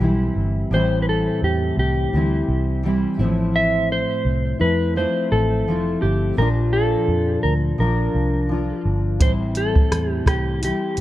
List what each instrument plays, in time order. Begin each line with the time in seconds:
Already playing: clean electric guitar G4
0.00 fingered electric bass B1, steel-string acoustic guitar E3 G3 C4 E4
0.36 fingered electric bass G1
0.71 fingered electric bass A1, steel-string acoustic guitar A2 E3 G3, clean electric guitar C5
0.75 steel-string acoustic guitar C4 E4
1.02 clean electric guitar B4
1.09 clean electric guitar A4
1.42 fingered electric bass E2, clean electric guitar G4
1.77 fingered electric bass C2, clean electric guitar G4
2.13 fingered electric bass D2, steel-string acoustic guitar E3 G3 C4 E4
2.48 fingered electric bass C2
2.83 steel-string acoustic guitar E3 G3 C4 E4
3.19 fingered electric bass A1, steel-string acoustic guitar A3 C4 E4
3.23 steel-string acoustic guitar A2 F3
3.56 clean electric guitar E5
3.92 clean electric guitar C5
4.25 fingered electric bass C2
4.59 fingered electric bass F2, steel-string acoustic guitar A3 C4 E4, clean electric guitar B4
4.96 steel-string acoustic guitar F3 A3 C4 E4, clean electric guitar C5
5.32 fingered electric bass A1, clean electric guitar A4
5.67 fingered electric bass F1, steel-string acoustic guitar F3 A3 C4
5.71 steel-string acoustic guitar E4
6.02 fingered electric bass G1, clean electric guitar G4
6.37 fingered electric bass A#1, steel-string acoustic guitar A#2 F3, clean electric guitar A#4
6.42 steel-string acoustic guitar D4 F4
6.73 clean electric guitar A4
7.08 fingered electric bass F2
7.43 fingered electric bass D2, clean electric guitar A#4
7.78 fingered electric bass A#1, steel-string acoustic guitar F3 D4 F4, clean electric guitar A#4
8.15 fingered electric bass C2
8.49 steel-string acoustic guitar F3 D4 F4
8.85 fingered electric bass G1
9.20 fingered electric bass A1, steel-string acoustic guitar A2 E3 G3, clean electric guitar C5, kick, closed hi-hat
9.24 steel-string acoustic guitar C4 E4
9.55 clean electric guitar A4, closed hi-hat
9.76 kick
9.92 fingered electric bass E2, cross-stick, closed hi-hat
10.11 clean electric guitar G4
10.26 fingered electric bass C2, clean electric guitar G4, kick, cross-stick, closed hi-hat
10.62 steel-string acoustic guitar E3 G3 C4 E4, clean electric guitar G4, closed hi-hat
10.97 fingered electric bass A1, closed hi-hat